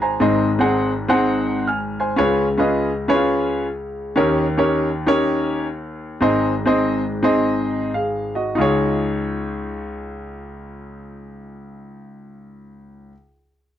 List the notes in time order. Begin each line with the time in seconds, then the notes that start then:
Already playing: G#1 G#2
0.02 C5 G#5 A#5
0.20 G#1 G#2 C4 D#4 G#4 C5 D#5
0.59 C4 D#4 G#4 C5 F#5
1.08 C4 D#4 G#4 C5 F#5
1.67 G#5 F6
2.00 C5 G#5
2.16 C#2 C#3 C#4 F4 G#4 B4 C#5
2.58 C#4 F4 G#4 B4 D#5
3.08 C#4 E4 G#4 B4 C#5
3.15 F4
4.16 D#2 D#3 C#4 D#4 G4 A#4 C#5
4.57 C#4 D#4 G4 A#4 C#5
5.06 C#4 D#4 G4 A#4 C#5
6.21 G#1 G#2 C4 D#4 G#4 C5 D#5
6.66 C4 D#4 G#4 C5 D#5
7.23 C4 D#4 G#4 C5 D#5
7.94 G#4 F5
8.35 F#4 D#5
8.55 C#2 D#4 F4
8.59 G#4 C#5